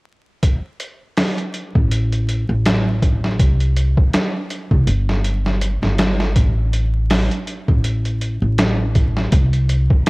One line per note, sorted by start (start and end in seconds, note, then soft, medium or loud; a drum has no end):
0.43 kick medium
0.43 closed hi-hat medium
0.80 closed hi-hat medium
1.17 snare loud
1.17 open hi-hat medium
1.38 closed hi-hat soft
1.54 closed hi-hat medium
1.75 2.45 A1 medium
1.75 kick medium
1.91 closed hi-hat medium
2.12 closed hi-hat soft
2.28 closed hi-hat medium
2.49 3.39 A1 medium
2.65 snare loud
2.65 closed hi-hat medium
3.02 kick medium
3.02 closed hi-hat medium
3.24 snare soft
3.39 3.94 C2 medium
3.39 kick loud
3.39 closed hi-hat medium
3.60 closed hi-hat soft
3.76 closed hi-hat medium
3.97 kick medium
4.13 snare loud
4.13 closed hi-hat medium
4.51 closed hi-hat medium
4.71 4.86 C2 medium
4.71 kick medium
4.87 5.79 G1 medium
4.87 closed hi-hat medium
5.09 snare soft
5.25 closed hi-hat medium
5.46 snare soft
5.61 closed hi-hat medium
5.82 6.36 G1 medium
5.82 snare soft
5.98 snare loud
5.98 closed hi-hat medium
6.20 snare medium
6.36 7.27 A1 medium
6.36 kick loud
6.36 closed hi-hat medium
6.73 closed hi-hat medium
7.10 snare loud
7.10 open hi-hat medium
7.31 closed hi-hat soft
7.47 closed hi-hat medium
7.68 8.38 A1 medium
7.68 kick medium
7.84 closed hi-hat medium
8.05 closed hi-hat soft
8.21 closed hi-hat medium
8.42 9.29 A1 medium
8.58 snare loud
8.58 closed hi-hat medium
8.95 kick medium
8.95 closed hi-hat medium
9.17 snare soft
9.32 9.86 C2 medium
9.32 kick loud
9.32 closed hi-hat medium
9.53 closed hi-hat soft
9.69 closed hi-hat medium
9.90 kick medium
10.06 closed hi-hat medium